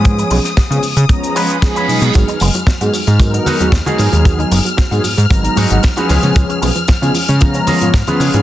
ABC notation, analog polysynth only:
X:1
M:4/4
L:1/16
Q:1/4=114
K:G#dor
V:1 name="Analog polysynth"
[E,G,B,CG]2 [E,G,B,CG] z2 [E,G,B,CG] z2 [E,G,B,Ca]3 z [E,G,B,CG]2 [F,G,B,DG]2- | [F,G,B,DG]2 [F,G,B,DG] z2 [F,G,B,DG] z2 [F,G,B,DA]3 [F,G,B,DF] z [F,G,B,DG]2 [F,G,B,DG]- | [F,G,B,DG]2 [F,G,B,DG] z2 [F,G,B,DG] z2 [F,G,B,Da]3 [F,G,B,DF] z [E,G,B,CG]2 [E,G,B,CG]- | [E,G,B,CG]2 [E,G,B,CG] z2 [E,G,B,CG] z2 [E,G,B,Ca]3 [E,G,B,CE] z [E,G,B,CG]2 [E,G,B,CG] |]